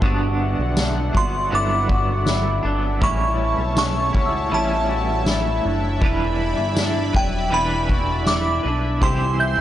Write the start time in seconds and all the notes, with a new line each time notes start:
Already playing: G3 G4 E5
0.01 G1 G2 D3 B3 D4 F#4 D5 F#5, kick, ride
0.58 B1
0.76 D4, snare, ride, tambourine
1.13 G1 B3 D4 F#4, kick
1.17 F#3 C6
1.50 G1 G2 D3 F#3 B3 D4 E4, ride
1.55 D6
1.89 F#4, kick
2.26 E4, snare, tambourine
2.63 G1 F#3 B3 D4
3.00 A1 A2 E3 G3 C#4 E4 C#5 A5 C#6, kick
3.58 B1
3.76 C#4 A5 C#6, snare, ride, tambourine
4.02 C#6
4.13 C#2 G3 C#4 E4 F#4, kick
4.26 E6
4.50 A1 A2 E3 G3 E4, ride
4.54 C#4 E4 A5
4.89 F#4
5.26 E4, snare, ride, tambourine
5.64 F#1 D4
6.01 E1 E3 G3 D4 E4 B4 D5 B5, kick, ride
6.58 G1
6.77 D4, snare, tambourine
7.13 E1 F#3 D4 E4 B4 G5, kick
7.50 E1 E3 G3 D4 E4 B4 B5, ride
7.89 F#4, kick
8.26 E4 D6, snare, ride, tambourine
8.63 B1 D4 E4 B4
9.01 C2 C3 E3 G3 C4 E4 G4 C5 C6, kick
9.39 E5 G6